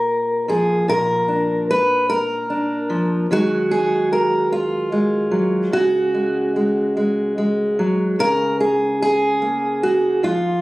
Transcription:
0, 0, Header, 1, 2, 480
1, 0, Start_track
1, 0, Key_signature, -5, "major"
1, 0, Tempo, 807537
1, 525, Time_signature, 6, 3, 24, 8
1, 3405, Tempo, 818554
1, 6270, End_track
2, 0, Start_track
2, 0, Title_t, "Steel-string acoustic guitar"
2, 0, Program_c, 0, 25
2, 0, Note_on_c, 0, 46, 68
2, 0, Note_on_c, 0, 58, 41
2, 0, Note_on_c, 0, 70, 85
2, 286, Note_off_c, 0, 70, 0
2, 287, Note_on_c, 0, 53, 56
2, 294, Note_on_c, 0, 68, 82
2, 517, Note_off_c, 0, 46, 0
2, 524, Note_on_c, 0, 46, 72
2, 529, Note_off_c, 0, 68, 0
2, 532, Note_on_c, 0, 70, 111
2, 762, Note_on_c, 0, 62, 39
2, 1008, Note_off_c, 0, 70, 0
2, 1014, Note_on_c, 0, 71, 100
2, 1032, Note_off_c, 0, 53, 0
2, 1032, Note_off_c, 0, 58, 0
2, 1243, Note_off_c, 0, 71, 0
2, 1245, Note_on_c, 0, 70, 99
2, 1478, Note_off_c, 0, 62, 0
2, 1486, Note_on_c, 0, 62, 45
2, 1722, Note_on_c, 0, 53, 63
2, 1934, Note_off_c, 0, 53, 0
2, 1936, Note_off_c, 0, 46, 0
2, 1936, Note_off_c, 0, 62, 0
2, 1965, Note_off_c, 0, 70, 0
2, 1966, Note_on_c, 0, 51, 66
2, 1970, Note_on_c, 0, 54, 49
2, 1975, Note_on_c, 0, 56, 47
2, 1978, Note_on_c, 0, 66, 106
2, 2207, Note_on_c, 0, 68, 89
2, 2445, Note_off_c, 0, 68, 0
2, 2452, Note_on_c, 0, 70, 91
2, 2687, Note_off_c, 0, 70, 0
2, 2688, Note_off_c, 0, 66, 0
2, 2689, Note_on_c, 0, 65, 71
2, 2919, Note_off_c, 0, 56, 0
2, 2926, Note_on_c, 0, 56, 46
2, 3152, Note_off_c, 0, 54, 0
2, 3159, Note_on_c, 0, 54, 59
2, 3374, Note_off_c, 0, 54, 0
2, 3376, Note_off_c, 0, 51, 0
2, 3403, Note_on_c, 0, 49, 70
2, 3408, Note_off_c, 0, 65, 0
2, 3408, Note_on_c, 0, 66, 101
2, 3642, Note_off_c, 0, 56, 0
2, 3649, Note_on_c, 0, 56, 39
2, 3886, Note_off_c, 0, 56, 0
2, 3893, Note_on_c, 0, 56, 37
2, 4125, Note_off_c, 0, 56, 0
2, 4132, Note_on_c, 0, 56, 42
2, 4365, Note_off_c, 0, 56, 0
2, 4373, Note_on_c, 0, 56, 44
2, 4611, Note_off_c, 0, 49, 0
2, 4614, Note_on_c, 0, 54, 59
2, 4825, Note_off_c, 0, 54, 0
2, 4850, Note_on_c, 0, 49, 65
2, 4854, Note_off_c, 0, 66, 0
2, 4854, Note_on_c, 0, 70, 112
2, 5089, Note_off_c, 0, 70, 0
2, 5091, Note_on_c, 0, 68, 84
2, 5332, Note_off_c, 0, 68, 0
2, 5338, Note_on_c, 0, 68, 93
2, 5566, Note_off_c, 0, 56, 0
2, 5569, Note_on_c, 0, 58, 42
2, 5812, Note_on_c, 0, 66, 89
2, 6045, Note_off_c, 0, 49, 0
2, 6045, Note_on_c, 0, 53, 63
2, 6048, Note_off_c, 0, 66, 0
2, 6048, Note_off_c, 0, 68, 0
2, 6051, Note_on_c, 0, 65, 89
2, 6254, Note_off_c, 0, 58, 0
2, 6255, Note_off_c, 0, 53, 0
2, 6270, Note_off_c, 0, 65, 0
2, 6270, End_track
0, 0, End_of_file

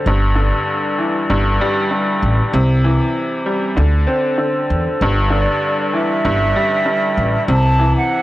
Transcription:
0, 0, Header, 1, 4, 480
1, 0, Start_track
1, 0, Tempo, 618557
1, 43, Time_signature, 4, 2, 24, 8
1, 6382, End_track
2, 0, Start_track
2, 0, Title_t, "Flute"
2, 0, Program_c, 0, 73
2, 4128, Note_on_c, 0, 74, 80
2, 4577, Note_off_c, 0, 74, 0
2, 4613, Note_on_c, 0, 76, 100
2, 5777, Note_off_c, 0, 76, 0
2, 5826, Note_on_c, 0, 81, 108
2, 6179, Note_off_c, 0, 81, 0
2, 6187, Note_on_c, 0, 78, 89
2, 6382, Note_off_c, 0, 78, 0
2, 6382, End_track
3, 0, Start_track
3, 0, Title_t, "Upright piano"
3, 0, Program_c, 1, 0
3, 0, Control_c, 1, 64, 127
3, 53, Control_c, 1, 64, 0
3, 55, Note_on_c, 1, 43, 94
3, 193, Control_c, 1, 64, 127
3, 275, Note_on_c, 1, 50, 83
3, 763, Note_on_c, 1, 52, 74
3, 997, Note_off_c, 1, 43, 0
3, 1008, Note_on_c, 1, 43, 98
3, 1250, Note_on_c, 1, 55, 87
3, 1468, Note_off_c, 1, 43, 0
3, 1479, Note_on_c, 1, 43, 76
3, 1959, Note_off_c, 1, 50, 0
3, 1961, Note_off_c, 1, 43, 0
3, 1964, Note_off_c, 1, 52, 0
3, 1966, Note_on_c, 1, 48, 99
3, 1967, Note_off_c, 1, 55, 0
3, 1971, Control_c, 1, 64, 0
3, 2114, Control_c, 1, 64, 127
3, 2206, Note_on_c, 1, 52, 81
3, 2684, Note_on_c, 1, 55, 79
3, 2923, Note_on_c, 1, 50, 87
3, 2924, Note_off_c, 1, 55, 0
3, 2925, Note_off_c, 1, 48, 0
3, 2925, Note_off_c, 1, 52, 0
3, 2935, Control_c, 1, 64, 0
3, 3074, Control_c, 1, 64, 127
3, 3158, Note_on_c, 1, 60, 80
3, 3386, Note_off_c, 1, 50, 0
3, 3398, Note_on_c, 1, 50, 75
3, 3881, Note_off_c, 1, 50, 0
3, 3881, Note_off_c, 1, 60, 0
3, 3893, Control_c, 1, 64, 0
3, 3896, Note_on_c, 1, 43, 98
3, 4028, Control_c, 1, 64, 127
3, 4115, Note_on_c, 1, 50, 77
3, 4603, Note_on_c, 1, 52, 74
3, 4837, Note_off_c, 1, 43, 0
3, 4849, Note_on_c, 1, 43, 94
3, 5090, Note_on_c, 1, 55, 81
3, 5308, Note_off_c, 1, 43, 0
3, 5320, Note_on_c, 1, 43, 80
3, 5799, Note_off_c, 1, 50, 0
3, 5802, Note_off_c, 1, 43, 0
3, 5803, Note_off_c, 1, 52, 0
3, 5806, Note_on_c, 1, 48, 96
3, 5807, Note_off_c, 1, 55, 0
3, 5812, Control_c, 1, 64, 0
3, 5950, Control_c, 1, 64, 127
3, 6046, Note_on_c, 1, 52, 84
3, 6382, Note_off_c, 1, 48, 0
3, 6382, Note_off_c, 1, 52, 0
3, 6382, End_track
4, 0, Start_track
4, 0, Title_t, "Upright bass"
4, 0, Program_c, 2, 32
4, 46, Note_on_c, 2, 31, 105
4, 386, Note_off_c, 2, 31, 0
4, 1007, Note_on_c, 2, 31, 93
4, 1217, Note_off_c, 2, 31, 0
4, 1726, Note_on_c, 2, 33, 91
4, 1855, Note_off_c, 2, 33, 0
4, 1967, Note_on_c, 2, 36, 106
4, 2306, Note_off_c, 2, 36, 0
4, 2928, Note_on_c, 2, 38, 104
4, 3138, Note_off_c, 2, 38, 0
4, 3649, Note_on_c, 2, 40, 99
4, 3776, Note_off_c, 2, 40, 0
4, 3888, Note_on_c, 2, 31, 105
4, 4227, Note_off_c, 2, 31, 0
4, 4848, Note_on_c, 2, 31, 92
4, 5058, Note_off_c, 2, 31, 0
4, 5567, Note_on_c, 2, 33, 89
4, 5695, Note_off_c, 2, 33, 0
4, 5806, Note_on_c, 2, 36, 105
4, 6146, Note_off_c, 2, 36, 0
4, 6382, End_track
0, 0, End_of_file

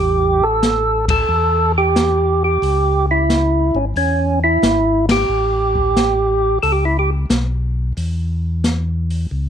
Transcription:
0, 0, Header, 1, 4, 480
1, 0, Start_track
1, 0, Tempo, 668151
1, 1887, Time_signature, 4, 2, 24, 8
1, 6818, End_track
2, 0, Start_track
2, 0, Title_t, "Tonewheel organ"
2, 0, Program_c, 0, 16
2, 0, Note_on_c, 0, 67, 91
2, 311, Note_on_c, 0, 69, 92
2, 321, Note_off_c, 0, 67, 0
2, 757, Note_off_c, 0, 69, 0
2, 791, Note_on_c, 0, 69, 92
2, 1236, Note_off_c, 0, 69, 0
2, 1277, Note_on_c, 0, 67, 90
2, 1746, Note_off_c, 0, 67, 0
2, 1755, Note_on_c, 0, 67, 87
2, 2197, Note_off_c, 0, 67, 0
2, 2234, Note_on_c, 0, 64, 75
2, 2701, Note_on_c, 0, 61, 71
2, 2720, Note_off_c, 0, 64, 0
2, 2767, Note_off_c, 0, 61, 0
2, 2853, Note_on_c, 0, 61, 81
2, 3157, Note_off_c, 0, 61, 0
2, 3188, Note_on_c, 0, 64, 97
2, 3633, Note_off_c, 0, 64, 0
2, 3673, Note_on_c, 0, 67, 80
2, 4730, Note_off_c, 0, 67, 0
2, 4760, Note_on_c, 0, 69, 68
2, 4829, Note_off_c, 0, 69, 0
2, 4830, Note_on_c, 0, 67, 66
2, 4917, Note_off_c, 0, 67, 0
2, 4923, Note_on_c, 0, 64, 65
2, 5009, Note_off_c, 0, 64, 0
2, 5021, Note_on_c, 0, 67, 67
2, 5104, Note_off_c, 0, 67, 0
2, 6818, End_track
3, 0, Start_track
3, 0, Title_t, "Tonewheel organ"
3, 0, Program_c, 1, 16
3, 0, Note_on_c, 1, 33, 72
3, 0, Note_on_c, 1, 40, 66
3, 300, Note_off_c, 1, 40, 0
3, 896, Note_off_c, 1, 33, 0
3, 925, Note_on_c, 1, 40, 72
3, 1856, Note_off_c, 1, 40, 0
3, 1885, Note_on_c, 1, 37, 78
3, 2667, Note_off_c, 1, 37, 0
3, 2692, Note_on_c, 1, 32, 66
3, 2833, Note_off_c, 1, 32, 0
3, 2844, Note_on_c, 1, 40, 68
3, 3296, Note_off_c, 1, 40, 0
3, 3322, Note_on_c, 1, 32, 73
3, 3775, Note_off_c, 1, 32, 0
3, 3800, Note_on_c, 1, 33, 78
3, 4733, Note_off_c, 1, 33, 0
3, 4761, Note_on_c, 1, 37, 74
3, 5214, Note_off_c, 1, 37, 0
3, 5242, Note_on_c, 1, 35, 74
3, 5695, Note_off_c, 1, 35, 0
3, 5726, Note_on_c, 1, 40, 74
3, 6657, Note_off_c, 1, 40, 0
3, 6690, Note_on_c, 1, 37, 68
3, 6818, Note_off_c, 1, 37, 0
3, 6818, End_track
4, 0, Start_track
4, 0, Title_t, "Drums"
4, 451, Note_on_c, 9, 38, 60
4, 452, Note_on_c, 9, 42, 46
4, 522, Note_off_c, 9, 38, 0
4, 524, Note_off_c, 9, 42, 0
4, 779, Note_on_c, 9, 36, 66
4, 781, Note_on_c, 9, 51, 62
4, 851, Note_off_c, 9, 36, 0
4, 852, Note_off_c, 9, 51, 0
4, 1408, Note_on_c, 9, 38, 63
4, 1409, Note_on_c, 9, 42, 50
4, 1480, Note_off_c, 9, 38, 0
4, 1481, Note_off_c, 9, 42, 0
4, 1890, Note_on_c, 9, 46, 41
4, 1961, Note_off_c, 9, 46, 0
4, 2369, Note_on_c, 9, 38, 53
4, 2370, Note_on_c, 9, 42, 46
4, 2441, Note_off_c, 9, 38, 0
4, 2442, Note_off_c, 9, 42, 0
4, 2847, Note_on_c, 9, 46, 38
4, 2919, Note_off_c, 9, 46, 0
4, 3327, Note_on_c, 9, 38, 66
4, 3328, Note_on_c, 9, 42, 48
4, 3399, Note_off_c, 9, 38, 0
4, 3400, Note_off_c, 9, 42, 0
4, 3656, Note_on_c, 9, 38, 69
4, 3657, Note_on_c, 9, 51, 62
4, 3727, Note_off_c, 9, 38, 0
4, 3729, Note_off_c, 9, 51, 0
4, 4135, Note_on_c, 9, 36, 43
4, 4207, Note_off_c, 9, 36, 0
4, 4285, Note_on_c, 9, 38, 60
4, 4287, Note_on_c, 9, 42, 43
4, 4357, Note_off_c, 9, 38, 0
4, 4358, Note_off_c, 9, 42, 0
4, 4764, Note_on_c, 9, 46, 39
4, 4836, Note_off_c, 9, 46, 0
4, 5245, Note_on_c, 9, 38, 63
4, 5246, Note_on_c, 9, 42, 47
4, 5316, Note_off_c, 9, 38, 0
4, 5318, Note_off_c, 9, 42, 0
4, 5728, Note_on_c, 9, 46, 43
4, 5800, Note_off_c, 9, 46, 0
4, 6207, Note_on_c, 9, 38, 56
4, 6209, Note_on_c, 9, 42, 46
4, 6279, Note_off_c, 9, 38, 0
4, 6281, Note_off_c, 9, 42, 0
4, 6540, Note_on_c, 9, 46, 31
4, 6612, Note_off_c, 9, 46, 0
4, 6818, End_track
0, 0, End_of_file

